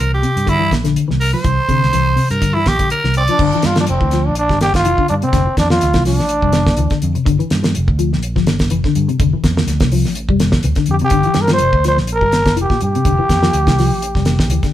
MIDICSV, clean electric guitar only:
0, 0, Header, 1, 3, 480
1, 0, Start_track
1, 0, Tempo, 483481
1, 1433, Time_signature, 4, 2, 24, 8
1, 14627, End_track
2, 0, Start_track
2, 0, Title_t, "Clean electric guitar"
2, 0, Program_c, 0, 27
2, 0, Note_on_c, 0, 52, 86
2, 187, Note_off_c, 0, 52, 0
2, 224, Note_on_c, 0, 48, 81
2, 431, Note_off_c, 0, 48, 0
2, 458, Note_on_c, 0, 50, 86
2, 575, Note_off_c, 0, 50, 0
2, 588, Note_on_c, 0, 52, 75
2, 799, Note_off_c, 0, 52, 0
2, 834, Note_on_c, 0, 50, 80
2, 1043, Note_off_c, 0, 50, 0
2, 1071, Note_on_c, 0, 52, 77
2, 1281, Note_off_c, 0, 52, 0
2, 1324, Note_on_c, 0, 53, 77
2, 1417, Note_off_c, 0, 53, 0
2, 1430, Note_on_c, 0, 52, 88
2, 1637, Note_off_c, 0, 52, 0
2, 1673, Note_on_c, 0, 50, 78
2, 1879, Note_off_c, 0, 50, 0
2, 1916, Note_on_c, 0, 52, 84
2, 2121, Note_off_c, 0, 52, 0
2, 2146, Note_on_c, 0, 48, 81
2, 2356, Note_off_c, 0, 48, 0
2, 2396, Note_on_c, 0, 50, 89
2, 2509, Note_off_c, 0, 50, 0
2, 2540, Note_on_c, 0, 52, 78
2, 2741, Note_off_c, 0, 52, 0
2, 2776, Note_on_c, 0, 50, 75
2, 2979, Note_off_c, 0, 50, 0
2, 3021, Note_on_c, 0, 52, 72
2, 3223, Note_off_c, 0, 52, 0
2, 3264, Note_on_c, 0, 53, 73
2, 3352, Note_off_c, 0, 53, 0
2, 3373, Note_on_c, 0, 50, 98
2, 3481, Note_off_c, 0, 50, 0
2, 3520, Note_on_c, 0, 52, 82
2, 3714, Note_off_c, 0, 52, 0
2, 3749, Note_on_c, 0, 53, 75
2, 3948, Note_off_c, 0, 53, 0
2, 3983, Note_on_c, 0, 52, 73
2, 4072, Note_off_c, 0, 52, 0
2, 4102, Note_on_c, 0, 53, 86
2, 4299, Note_off_c, 0, 53, 0
2, 4469, Note_on_c, 0, 55, 78
2, 4669, Note_off_c, 0, 55, 0
2, 4821, Note_on_c, 0, 52, 83
2, 4927, Note_off_c, 0, 52, 0
2, 4948, Note_on_c, 0, 50, 77
2, 5148, Note_off_c, 0, 50, 0
2, 5189, Note_on_c, 0, 48, 75
2, 5277, Note_off_c, 0, 48, 0
2, 5290, Note_on_c, 0, 50, 97
2, 5401, Note_off_c, 0, 50, 0
2, 5668, Note_on_c, 0, 53, 76
2, 5869, Note_off_c, 0, 53, 0
2, 5913, Note_on_c, 0, 52, 74
2, 5999, Note_off_c, 0, 52, 0
2, 6018, Note_on_c, 0, 53, 80
2, 6218, Note_off_c, 0, 53, 0
2, 6380, Note_on_c, 0, 55, 80
2, 6584, Note_off_c, 0, 55, 0
2, 6738, Note_on_c, 0, 52, 87
2, 6846, Note_off_c, 0, 52, 0
2, 6861, Note_on_c, 0, 50, 82
2, 7065, Note_off_c, 0, 50, 0
2, 7099, Note_on_c, 0, 48, 73
2, 7192, Note_off_c, 0, 48, 0
2, 7202, Note_on_c, 0, 50, 96
2, 7317, Note_off_c, 0, 50, 0
2, 7339, Note_on_c, 0, 52, 79
2, 7544, Note_off_c, 0, 52, 0
2, 7573, Note_on_c, 0, 53, 79
2, 7780, Note_off_c, 0, 53, 0
2, 7930, Note_on_c, 0, 53, 83
2, 8134, Note_off_c, 0, 53, 0
2, 8298, Note_on_c, 0, 53, 79
2, 8503, Note_off_c, 0, 53, 0
2, 8646, Note_on_c, 0, 52, 89
2, 8758, Note_off_c, 0, 52, 0
2, 8789, Note_on_c, 0, 50, 79
2, 8989, Note_off_c, 0, 50, 0
2, 9019, Note_on_c, 0, 48, 75
2, 9111, Note_off_c, 0, 48, 0
2, 9139, Note_on_c, 0, 50, 97
2, 9246, Note_off_c, 0, 50, 0
2, 9266, Note_on_c, 0, 52, 77
2, 9467, Note_off_c, 0, 52, 0
2, 9504, Note_on_c, 0, 53, 75
2, 9706, Note_off_c, 0, 53, 0
2, 9747, Note_on_c, 0, 52, 74
2, 9835, Note_off_c, 0, 52, 0
2, 9851, Note_on_c, 0, 53, 77
2, 10053, Note_off_c, 0, 53, 0
2, 10222, Note_on_c, 0, 55, 75
2, 10424, Note_off_c, 0, 55, 0
2, 10565, Note_on_c, 0, 52, 88
2, 10677, Note_off_c, 0, 52, 0
2, 10693, Note_on_c, 0, 50, 79
2, 10898, Note_off_c, 0, 50, 0
2, 10936, Note_on_c, 0, 48, 77
2, 11028, Note_off_c, 0, 48, 0
2, 11041, Note_on_c, 0, 50, 96
2, 11154, Note_off_c, 0, 50, 0
2, 11177, Note_on_c, 0, 52, 80
2, 11380, Note_off_c, 0, 52, 0
2, 11420, Note_on_c, 0, 53, 71
2, 11621, Note_off_c, 0, 53, 0
2, 11761, Note_on_c, 0, 53, 84
2, 11965, Note_off_c, 0, 53, 0
2, 12133, Note_on_c, 0, 55, 73
2, 12336, Note_off_c, 0, 55, 0
2, 12473, Note_on_c, 0, 52, 84
2, 12587, Note_off_c, 0, 52, 0
2, 12610, Note_on_c, 0, 46, 78
2, 12813, Note_off_c, 0, 46, 0
2, 12859, Note_on_c, 0, 48, 75
2, 12946, Note_off_c, 0, 48, 0
2, 12962, Note_on_c, 0, 50, 92
2, 13071, Note_off_c, 0, 50, 0
2, 13091, Note_on_c, 0, 52, 83
2, 13293, Note_off_c, 0, 52, 0
2, 13333, Note_on_c, 0, 53, 77
2, 13534, Note_off_c, 0, 53, 0
2, 13569, Note_on_c, 0, 52, 77
2, 13660, Note_off_c, 0, 52, 0
2, 13693, Note_on_c, 0, 53, 87
2, 13888, Note_off_c, 0, 53, 0
2, 14063, Note_on_c, 0, 55, 79
2, 14258, Note_off_c, 0, 55, 0
2, 14413, Note_on_c, 0, 52, 87
2, 14515, Note_off_c, 0, 52, 0
2, 14541, Note_on_c, 0, 50, 80
2, 14627, Note_off_c, 0, 50, 0
2, 14627, End_track
3, 0, Start_track
3, 0, Title_t, "Muted clean electric guitar strokes"
3, 5427, Note_on_c, 9, 29, 77
3, 5527, Note_off_c, 9, 29, 0
3, 7821, Note_on_c, 9, 29, 79
3, 7920, Note_off_c, 9, 29, 0
3, 14627, End_track
0, 0, End_of_file